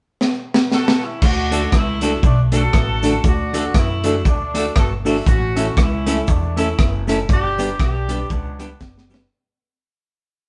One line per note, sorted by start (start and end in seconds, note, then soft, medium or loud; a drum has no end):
0.21 snare medium
0.54 snare medium
0.72 1.00 F#4 medium
0.72 1.00 A4 loud
0.72 snare medium
0.88 snare medium
1.03 1.23 C#4 medium
1.03 1.23 E4 medium
1.22 1.65 D2 loud
1.22 1.74 D4 medium
1.22 1.74 F#4 loud
1.22 kick loud
1.22 crash loud
1.22 cabasa medium
1.51 1.61 A3 medium
1.51 1.64 D4 medium
1.51 1.61 D4 medium
1.51 1.64 F#4 medium
1.51 1.61 F#4 medium
1.51 1.64 A4 medium
1.51 1.62 A4 medium
1.51 closed hi-hat medium
1.51 cabasa medium
1.72 2.16 C#2 medium
1.72 2.21 A3 medium
1.72 2.21 E4 loud
1.72 kick loud
1.72 cross-stick loud
1.72 cabasa medium
2.01 2.11 A3 medium
2.01 2.14 D4 loud
2.01 2.12 D4 medium
2.01 2.15 F#4 medium
2.01 2.12 F#4 medium
2.01 2.15 A4 loud
2.01 2.12 A4 loud
2.01 closed hi-hat medium
2.01 cabasa medium
2.23 2.66 B1 loud
2.23 2.38 A3 medium
2.23 2.38 D4 medium
2.23 kick loud
2.23 cabasa medium
2.52 2.62 A3 medium
2.52 2.65 D4 medium
2.52 2.62 D4 medium
2.52 2.65 F#4 medium
2.52 2.62 F#4 medium
2.52 3.21 F#4 medium
2.52 2.65 A4 loud
2.52 2.63 A4 medium
2.52 3.21 A4 loud
2.52 closed hi-hat medium
2.52 cabasa medium
2.73 3.17 A1 loud
2.73 kick loud
2.73 cross-stick loud
2.73 cabasa medium
3.02 3.12 A3 medium
3.02 3.15 D4 medium
3.02 3.13 D4 loud
3.02 3.16 F#4 medium
3.02 3.13 F#4 medium
3.02 3.16 A4 loud
3.02 3.13 A4 loud
3.02 closed hi-hat medium
3.02 cabasa medium
3.24 3.67 D2 loud
3.24 3.76 D4 medium
3.24 3.76 F#4 loud
3.24 kick loud
3.24 cabasa medium
3.53 3.63 A3 medium
3.53 3.66 D4 medium
3.53 3.63 D4 medium
3.53 3.66 F#4 medium
3.53 3.64 F#4 medium
3.53 3.67 A4 loud
3.53 3.64 A4 medium
3.53 closed hi-hat medium
3.53 cabasa medium
3.74 4.25 F#2 medium
3.74 4.23 A3 medium
3.74 4.23 E4 loud
3.74 kick loud
3.74 cross-stick loud
3.74 cabasa medium
4.04 4.14 A3 medium
4.04 4.17 D4 loud
4.04 4.14 D4 medium
4.04 4.17 F#4 medium
4.04 4.14 F#4 medium
4.04 4.17 A4 loud
4.04 4.14 A4 medium
4.04 closed hi-hat medium
4.04 cabasa medium
4.25 4.68 D2 medium
4.25 4.74 A3 medium
4.25 4.73 D4 medium
4.25 kick loud
4.25 cabasa medium
4.54 4.64 A3 medium
4.54 4.67 D4 loud
4.54 4.64 D4 medium
4.54 4.67 F#4 medium
4.54 4.65 F#4 medium
4.54 4.68 A4 loud
4.54 4.65 A4 loud
4.54 closed hi-hat medium
4.54 cabasa medium
4.76 5.19 G1 medium
4.76 4.92 F#4 medium
4.76 4.91 A4 medium
4.76 kick loud
4.76 cross-stick loud
4.76 cabasa medium
5.05 5.15 A3 medium
5.05 5.27 C#4 medium
5.05 5.18 D4 medium
5.05 5.15 D4 medium
5.05 5.26 E4 medium
5.05 5.18 F#4 medium
5.05 5.15 F#4 medium
5.05 5.18 A4 loud
5.05 5.16 A4 medium
5.05 open hi-hat soft
5.05 cabasa medium
5.26 5.70 A1 loud
5.26 5.75 C#4 medium
5.26 5.75 F#4 loud
5.26 kick loud
5.26 hi-hat pedal medium
5.26 cabasa medium
5.55 5.66 A3 medium
5.55 5.68 C#4 loud
5.55 5.66 C#4 medium
5.55 5.68 E4 medium
5.55 5.66 E4 medium
5.55 5.69 A4 medium
5.55 5.66 A4 medium
5.55 closed hi-hat medium
5.55 cabasa medium
5.77 6.20 C#2 medium
5.77 6.29 C#4 medium
5.77 6.29 E4 loud
5.77 kick loud
5.77 cross-stick loud
5.77 cabasa medium
6.06 6.16 A3 medium
6.06 6.19 C#4 loud
6.06 6.16 C#4 medium
6.06 6.19 E4 medium
6.06 6.17 E4 medium
6.06 6.19 A4 loud
6.06 6.17 A4 loud
6.06 closed hi-hat medium
6.06 cabasa medium
6.27 6.71 E2 medium
6.27 6.59 A3 medium
6.27 6.59 D4 medium
6.27 kick loud
6.27 cabasa medium
6.56 6.67 A3 medium
6.56 6.69 C#4 medium
6.56 6.67 C#4 medium
6.56 7.04 C#4 medium
6.56 6.70 E4 medium
6.56 6.67 E4 medium
6.56 7.03 E4 medium
6.56 6.70 A4 loud
6.56 6.67 A4 medium
6.56 closed hi-hat medium
6.56 cabasa medium
6.79 7.22 F#1 medium
6.79 kick loud
6.79 cross-stick loud
6.79 cabasa medium
7.07 7.17 A3 medium
7.07 7.20 C#4 medium
7.07 7.18 C#4 loud
7.07 7.20 E4 medium
7.07 7.18 E4 medium
7.07 7.21 A4 loud
7.07 7.18 A4 loud
7.07 closed hi-hat medium
7.07 cabasa medium
7.29 7.72 G1 loud
7.29 7.77 D4 loud
7.29 7.77 G4 loud
7.29 kick loud
7.29 cabasa medium
7.58 7.68 G3 medium
7.58 7.68 B3 medium
7.58 7.71 D4 medium
7.58 7.68 D4 medium
7.58 7.71 G4 medium
7.58 7.68 G4 medium
7.58 7.71 B4 medium
7.58 closed hi-hat loud
7.58 cabasa medium
7.79 8.22 B1 medium
7.79 8.28 D4 medium
7.79 8.28 G4 loud
7.79 kick loud
7.79 cross-stick loud
7.79 cabasa medium
8.08 8.18 G3 medium
8.08 8.19 B3 medium
8.08 8.21 D4 loud
8.08 8.19 D4 loud
8.08 8.22 G4 medium
8.08 8.19 G4 medium
8.08 8.22 B4 loud
8.08 closed hi-hat medium
8.08 cabasa medium
8.30 8.73 C#2 loud
8.30 9.07 B3 medium
8.30 9.07 D4 medium
8.30 kick loud
8.30 cabasa medium
8.59 8.69 G3 medium
8.59 8.69 B3 medium
8.59 8.72 D4 medium
8.59 8.69 D4 loud
8.59 8.72 G4 medium
8.59 8.70 G4 medium
8.59 8.72 B4 loud
8.59 closed hi-hat medium
8.59 cabasa medium
8.80 9.24 F#1 medium
8.80 kick loud
8.80 snare medium
8.80 cabasa medium
8.98 snare medium
9.10 9.19 G3 medium
9.10 9.19 B3 medium
9.10 9.22 D4 medium
9.10 9.20 D4 medium
9.10 9.23 G4 medium
9.10 9.20 G4 medium
9.10 9.23 B4 medium
9.10 cabasa medium
9.14 snare loud